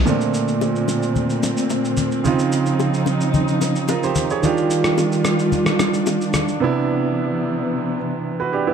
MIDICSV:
0, 0, Header, 1, 4, 480
1, 0, Start_track
1, 0, Key_signature, -2, "major"
1, 0, Tempo, 545455
1, 58, Time_signature, 4, 2, 24, 8
1, 7689, End_track
2, 0, Start_track
2, 0, Title_t, "Grand piano"
2, 0, Program_c, 0, 0
2, 49, Note_on_c, 0, 46, 70
2, 59, Note_on_c, 0, 57, 65
2, 69, Note_on_c, 0, 60, 62
2, 79, Note_on_c, 0, 62, 80
2, 206, Control_c, 0, 64, 127
2, 1938, Note_off_c, 0, 46, 0
2, 1943, Note_off_c, 0, 57, 0
2, 1948, Note_off_c, 0, 60, 0
2, 1953, Note_off_c, 0, 62, 0
2, 1970, Note_on_c, 0, 49, 69
2, 1981, Note_on_c, 0, 60, 65
2, 1988, Control_c, 0, 64, 0
2, 1991, Note_on_c, 0, 63, 66
2, 2001, Note_on_c, 0, 65, 80
2, 2131, Control_c, 0, 64, 127
2, 3401, Note_off_c, 0, 65, 0
2, 3427, Note_on_c, 0, 70, 64
2, 3431, Note_on_c, 0, 65, 54
2, 3541, Note_off_c, 0, 70, 0
2, 3544, Note_off_c, 0, 65, 0
2, 3552, Note_on_c, 0, 72, 70
2, 3558, Note_on_c, 0, 67, 63
2, 3776, Note_off_c, 0, 72, 0
2, 3779, Note_off_c, 0, 67, 0
2, 3792, Note_on_c, 0, 73, 63
2, 3797, Note_on_c, 0, 68, 52
2, 3859, Note_off_c, 0, 49, 0
2, 3865, Note_off_c, 0, 60, 0
2, 3869, Note_off_c, 0, 63, 0
2, 3892, Note_on_c, 0, 51, 73
2, 3902, Note_on_c, 0, 62, 65
2, 3912, Control_c, 0, 64, 0
2, 3912, Note_on_c, 0, 65, 68
2, 3923, Note_on_c, 0, 67, 81
2, 4016, Note_off_c, 0, 73, 0
2, 4018, Note_off_c, 0, 68, 0
2, 4052, Control_c, 0, 64, 127
2, 5780, Note_off_c, 0, 51, 0
2, 5785, Note_off_c, 0, 62, 0
2, 5790, Note_off_c, 0, 65, 0
2, 5795, Note_off_c, 0, 67, 0
2, 5810, Note_on_c, 0, 48, 74
2, 5821, Note_on_c, 0, 59, 67
2, 5828, Control_c, 0, 64, 0
2, 5831, Note_on_c, 0, 62, 67
2, 5841, Note_on_c, 0, 64, 80
2, 5962, Control_c, 0, 64, 127
2, 6995, Note_off_c, 0, 59, 0
2, 7000, Note_off_c, 0, 62, 0
2, 7006, Note_off_c, 0, 64, 0
2, 7390, Note_on_c, 0, 71, 68
2, 7395, Note_on_c, 0, 66, 56
2, 7496, Note_off_c, 0, 71, 0
2, 7499, Note_off_c, 0, 66, 0
2, 7506, Note_on_c, 0, 67, 69
2, 7512, Note_on_c, 0, 62, 58
2, 7621, Note_off_c, 0, 67, 0
2, 7624, Note_off_c, 0, 62, 0
2, 7632, Note_on_c, 0, 64, 67
2, 7637, Note_on_c, 0, 59, 55
2, 7689, Note_off_c, 0, 48, 0
2, 7689, Note_off_c, 0, 59, 0
2, 7689, Note_off_c, 0, 64, 0
2, 7689, End_track
3, 0, Start_track
3, 0, Title_t, "String section"
3, 0, Program_c, 1, 48
3, 57, Note_on_c, 1, 46, 77
3, 57, Note_on_c, 1, 50, 68
3, 57, Note_on_c, 1, 57, 69
3, 57, Note_on_c, 1, 60, 81
3, 1958, Note_off_c, 1, 50, 0
3, 1959, Note_off_c, 1, 46, 0
3, 1959, Note_off_c, 1, 57, 0
3, 1978, Note_on_c, 1, 49, 73
3, 1979, Note_on_c, 1, 53, 68
3, 1979, Note_on_c, 1, 63, 81
3, 3863, Note_off_c, 1, 60, 0
3, 3879, Note_off_c, 1, 49, 0
3, 3879, Note_off_c, 1, 53, 0
3, 3879, Note_off_c, 1, 63, 0
3, 3898, Note_on_c, 1, 51, 74
3, 3898, Note_on_c, 1, 62, 68
3, 3898, Note_on_c, 1, 65, 84
3, 3899, Note_on_c, 1, 55, 72
3, 5799, Note_off_c, 1, 51, 0
3, 5799, Note_off_c, 1, 55, 0
3, 5799, Note_off_c, 1, 65, 0
3, 5817, Note_on_c, 1, 48, 74
3, 5817, Note_on_c, 1, 52, 72
3, 5817, Note_on_c, 1, 59, 71
3, 7689, Note_off_c, 1, 48, 0
3, 7689, Note_off_c, 1, 52, 0
3, 7689, Note_off_c, 1, 59, 0
3, 7689, Note_off_c, 1, 62, 0
3, 7689, End_track
4, 0, Start_track
4, 0, Title_t, "Drums"
4, 58, Note_on_c, 9, 82, 64
4, 60, Note_on_c, 9, 64, 66
4, 146, Note_off_c, 9, 82, 0
4, 148, Note_off_c, 9, 64, 0
4, 183, Note_on_c, 9, 82, 49
4, 271, Note_off_c, 9, 82, 0
4, 297, Note_on_c, 9, 82, 86
4, 385, Note_off_c, 9, 82, 0
4, 421, Note_on_c, 9, 82, 45
4, 509, Note_off_c, 9, 82, 0
4, 540, Note_on_c, 9, 60, 68
4, 540, Note_on_c, 9, 82, 63
4, 628, Note_off_c, 9, 60, 0
4, 628, Note_off_c, 9, 82, 0
4, 665, Note_on_c, 9, 82, 48
4, 753, Note_off_c, 9, 82, 0
4, 774, Note_on_c, 9, 61, 65
4, 777, Note_on_c, 9, 82, 86
4, 862, Note_off_c, 9, 61, 0
4, 865, Note_off_c, 9, 82, 0
4, 902, Note_on_c, 9, 82, 49
4, 990, Note_off_c, 9, 82, 0
4, 1018, Note_on_c, 9, 82, 57
4, 1019, Note_on_c, 9, 64, 73
4, 1106, Note_off_c, 9, 82, 0
4, 1107, Note_off_c, 9, 64, 0
4, 1141, Note_on_c, 9, 82, 47
4, 1229, Note_off_c, 9, 82, 0
4, 1258, Note_on_c, 9, 82, 94
4, 1260, Note_on_c, 9, 61, 70
4, 1346, Note_off_c, 9, 82, 0
4, 1348, Note_off_c, 9, 61, 0
4, 1383, Note_on_c, 9, 82, 58
4, 1471, Note_off_c, 9, 82, 0
4, 1493, Note_on_c, 9, 82, 69
4, 1499, Note_on_c, 9, 60, 68
4, 1581, Note_off_c, 9, 82, 0
4, 1587, Note_off_c, 9, 60, 0
4, 1626, Note_on_c, 9, 82, 49
4, 1714, Note_off_c, 9, 82, 0
4, 1732, Note_on_c, 9, 82, 83
4, 1736, Note_on_c, 9, 64, 69
4, 1820, Note_off_c, 9, 82, 0
4, 1824, Note_off_c, 9, 64, 0
4, 1861, Note_on_c, 9, 82, 54
4, 1949, Note_off_c, 9, 82, 0
4, 1977, Note_on_c, 9, 82, 68
4, 1980, Note_on_c, 9, 64, 63
4, 2065, Note_off_c, 9, 82, 0
4, 2068, Note_off_c, 9, 64, 0
4, 2102, Note_on_c, 9, 82, 48
4, 2190, Note_off_c, 9, 82, 0
4, 2217, Note_on_c, 9, 82, 85
4, 2305, Note_off_c, 9, 82, 0
4, 2341, Note_on_c, 9, 82, 45
4, 2429, Note_off_c, 9, 82, 0
4, 2460, Note_on_c, 9, 60, 65
4, 2460, Note_on_c, 9, 82, 66
4, 2548, Note_off_c, 9, 60, 0
4, 2548, Note_off_c, 9, 82, 0
4, 2585, Note_on_c, 9, 82, 48
4, 2673, Note_off_c, 9, 82, 0
4, 2693, Note_on_c, 9, 61, 67
4, 2698, Note_on_c, 9, 82, 84
4, 2781, Note_off_c, 9, 61, 0
4, 2786, Note_off_c, 9, 82, 0
4, 2822, Note_on_c, 9, 82, 51
4, 2910, Note_off_c, 9, 82, 0
4, 2938, Note_on_c, 9, 82, 59
4, 2939, Note_on_c, 9, 64, 79
4, 3026, Note_off_c, 9, 82, 0
4, 3027, Note_off_c, 9, 64, 0
4, 3061, Note_on_c, 9, 82, 46
4, 3149, Note_off_c, 9, 82, 0
4, 3179, Note_on_c, 9, 82, 91
4, 3181, Note_on_c, 9, 61, 72
4, 3267, Note_off_c, 9, 82, 0
4, 3269, Note_off_c, 9, 61, 0
4, 3304, Note_on_c, 9, 82, 59
4, 3392, Note_off_c, 9, 82, 0
4, 3414, Note_on_c, 9, 82, 68
4, 3420, Note_on_c, 9, 60, 72
4, 3502, Note_off_c, 9, 82, 0
4, 3508, Note_off_c, 9, 60, 0
4, 3548, Note_on_c, 9, 82, 50
4, 3636, Note_off_c, 9, 82, 0
4, 3653, Note_on_c, 9, 82, 89
4, 3657, Note_on_c, 9, 64, 69
4, 3741, Note_off_c, 9, 82, 0
4, 3745, Note_off_c, 9, 64, 0
4, 3783, Note_on_c, 9, 82, 52
4, 3871, Note_off_c, 9, 82, 0
4, 3899, Note_on_c, 9, 82, 68
4, 3901, Note_on_c, 9, 64, 67
4, 3987, Note_off_c, 9, 82, 0
4, 3989, Note_off_c, 9, 64, 0
4, 4024, Note_on_c, 9, 82, 50
4, 4112, Note_off_c, 9, 82, 0
4, 4139, Note_on_c, 9, 82, 90
4, 4227, Note_off_c, 9, 82, 0
4, 4262, Note_on_c, 9, 37, 88
4, 4262, Note_on_c, 9, 82, 45
4, 4350, Note_off_c, 9, 37, 0
4, 4350, Note_off_c, 9, 82, 0
4, 4380, Note_on_c, 9, 60, 67
4, 4381, Note_on_c, 9, 82, 67
4, 4468, Note_off_c, 9, 60, 0
4, 4469, Note_off_c, 9, 82, 0
4, 4506, Note_on_c, 9, 82, 51
4, 4594, Note_off_c, 9, 82, 0
4, 4615, Note_on_c, 9, 61, 66
4, 4617, Note_on_c, 9, 37, 86
4, 4618, Note_on_c, 9, 82, 84
4, 4703, Note_off_c, 9, 61, 0
4, 4705, Note_off_c, 9, 37, 0
4, 4706, Note_off_c, 9, 82, 0
4, 4744, Note_on_c, 9, 82, 52
4, 4832, Note_off_c, 9, 82, 0
4, 4859, Note_on_c, 9, 64, 77
4, 4859, Note_on_c, 9, 82, 58
4, 4947, Note_off_c, 9, 64, 0
4, 4947, Note_off_c, 9, 82, 0
4, 4983, Note_on_c, 9, 37, 87
4, 4983, Note_on_c, 9, 82, 47
4, 5071, Note_off_c, 9, 37, 0
4, 5071, Note_off_c, 9, 82, 0
4, 5099, Note_on_c, 9, 37, 88
4, 5099, Note_on_c, 9, 82, 96
4, 5101, Note_on_c, 9, 61, 75
4, 5187, Note_off_c, 9, 37, 0
4, 5187, Note_off_c, 9, 82, 0
4, 5189, Note_off_c, 9, 61, 0
4, 5224, Note_on_c, 9, 82, 61
4, 5312, Note_off_c, 9, 82, 0
4, 5335, Note_on_c, 9, 82, 72
4, 5340, Note_on_c, 9, 60, 71
4, 5423, Note_off_c, 9, 82, 0
4, 5428, Note_off_c, 9, 60, 0
4, 5467, Note_on_c, 9, 82, 51
4, 5555, Note_off_c, 9, 82, 0
4, 5573, Note_on_c, 9, 82, 89
4, 5577, Note_on_c, 9, 64, 68
4, 5578, Note_on_c, 9, 37, 88
4, 5661, Note_off_c, 9, 82, 0
4, 5665, Note_off_c, 9, 64, 0
4, 5666, Note_off_c, 9, 37, 0
4, 5703, Note_on_c, 9, 82, 55
4, 5791, Note_off_c, 9, 82, 0
4, 7689, End_track
0, 0, End_of_file